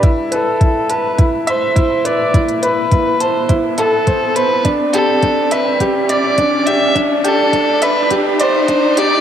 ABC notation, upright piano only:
X:1
M:4/4
L:1/8
Q:1/4=104
K:Ador
V:1 name="Upright piano"
E B E a E e E B | E B E a E A c c | D G D e G d D G | D G D e G d D G |]